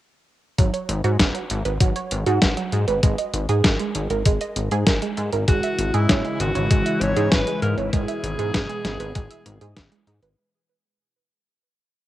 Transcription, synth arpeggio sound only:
0.58 F#3
0.74 C#5
1.04 F#4
1.19 B4
1.35 F#3
1.65 B4
1.81 F#3
1.96 C#5
2.27 F#4
2.42 B4
2.57 F#3
2.88 B4
3.03 G#3
3.19 D#5
3.49 G#4
3.64 A#4
3.80 G#3
4.10 A#4
4.26 G#3
4.41 D#5
4.72 G#4
4.87 A#4
5.02 G#3
5.33 A#4
5.48 G#3
5.64 E5
5.94 G#4
6.09 C#5
6.25 G#3
6.55 C#5
6.71 G#3
6.86 E5
7.17 G#4
7.32 C#5
7.47 G#3
7.78 C#5
7.93 G#3
8.08 E5
8.39 G#4
8.54 B4
8.70 G#3
9.00 B4
9.15 G#3
9.31 E5
9.61 G#4
9.77 B4
9.92 G#3
10.23 B4

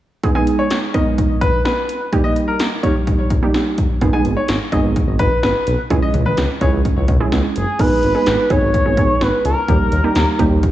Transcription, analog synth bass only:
4.01 G#1
4.25 G#1
4.49 G#1
4.72 G#1
4.84 G#1
5.08 G#1
5.19 G#1
5.43 G#1
5.67 B1
5.90 C#2
6.14 C#2
6.38 C#2
6.61 C#2
6.73 C#2
6.97 C#2
7.08 C#2
7.32 C#2
7.56 F#1
7.79 G#1
8.03 G#1
8.27 G#1
8.50 G#1
8.62 G#1
8.86 G#1
8.97 G#1
9.21 G#1
9.45 C#2
9.68 D#2
9.92 D#2
10.16 D#2
10.39 D#2
10.51 D#2

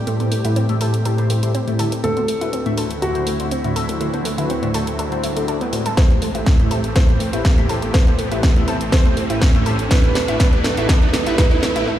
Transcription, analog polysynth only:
0.07 A2 A3 E4 G4 C5
0.20 A2 A3 E4 G4 C5
0.45 A2 A3 E4 G4 B4
0.69 A2 A3 E4 G4 E5
0.81 A2 A3 E4 G4 C5
1.05 A2 A3 E4 G4 C5
1.18 A2 A3 E4 G4 C5
1.43 A2 A3 E4 G4 C5
1.68 A2 A3 E4 G4 E5
1.79 D3 A3 E4 G4 E5
2.04 D3 A3 D4 F#4 C5
2.17 D3 A3 D4 F#4 C5
2.41 D3 A3 D4 F#4 B4
2.66 D3 A3 D4 F#4 E5
2.78 D3 A3 D4 F#4 C5
3.02 D3 A3 D4 F#4 C5
3.15 D3 A3 D4 F#4 C5
3.40 D3 A3 D4 F#4 C5
3.64 D3 A3 D4 F#4 E5
3.76 D3 A3 D4 F#4 E5
4.01 D3 A3 D4 F#4 C5
4.14 D3 A3 D4 F#4 C5
4.38 D3 A3 D4 F#4 B4
4.63 D3 A3 D4 F#4 E5
4.74 D3 A3 D4 F#4 C5
4.99 D3 A3 D4 F#4 C5
5.12 D3 A3 D4 F#4 C5
5.36 D3 A3 D4 F#4 D5
5.48 D3 A3 D4 F#4 D5
5.73 A2 A3 D4 F#4 C5
5.97 A2 A3 E4 G4 C5
6.10 A2 A3 E4 G4 C5
6.35 A2 A3 E4 G4 B4
6.59 A2 A3 E4 G4 E5
6.71 A2 A3 E4 G4 C5
6.96 A2 A3 E4 G4 C5
7.09 A2 A3 E4 G4 C5
7.33 A2 A3 E4 G4 B4
7.58 A2 A3 E4 G4 E5
7.69 A2 A3 E4 G4 C5
7.94 A2 A3 E4 G4 C5
8.07 A2 A3 E4 G4 C5
8.32 A2 A3 E4 G4 B4
8.56 A2 A3 E4 G4 E5
8.68 A2 A3 E4 G4 C5
8.92 A2 A3 E4 G4 C5
9.05 A2 A3 E4 G4 C5
9.30 A2 A3 E4 G4 B4
9.55 A2 A3 E4 G4 E5
9.66 A2 A3 E4 G4 C5
9.91 A2 A3 E4 G4 B4
10.04 A2 A3 E4 G4 B4
10.28 A2 A3 E4 G4 B4
10.40 A2 E4 G4 B4
10.53 A2 A3 E4 G4 B4
10.77 A2 A3 E4 G4 B4
10.89 A2 A3 E4 G4 B4
11.02 A2 A3 E4 G4 B4
11.26 A2 A3 E4 G4 B4
11.38 A2 A3 B4
11.51 A2 A3 E4 G4 B4
11.76 A2 A3 E4 G4 B4

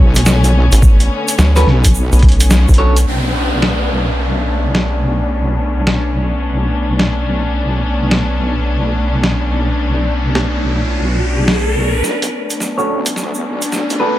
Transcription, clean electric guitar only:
1.56 D4 F#4 A4 B4
2.78 D4 F#4 A4 C#5
12.78 D4 F#4 A4 C#5
14.00 D4 F#4 A4 B4

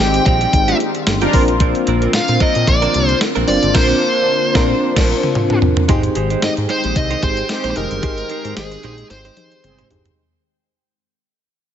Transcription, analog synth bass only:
0.00 G#1
0.26 A#1
0.53 G#1
1.07 G1
1.34 A#1
1.88 A#1
2.14 A#2
2.29 A#2
2.56 A#2
2.68 A#1
2.95 C2
3.36 A#1
3.48 G1
3.63 G#1
3.75 A#1
4.55 A#1
4.96 A#1
5.89 G#1
6.16 G#1
6.43 G#2
6.58 G#2
6.85 A#1
6.96 C2
7.23 G#1
7.64 A#1
7.77 F1
7.91 G1
8.03 G#1
8.45 G#2
8.57 G#1
8.84 A#1
9.10 G#1
9.64 G1
9.91 G1

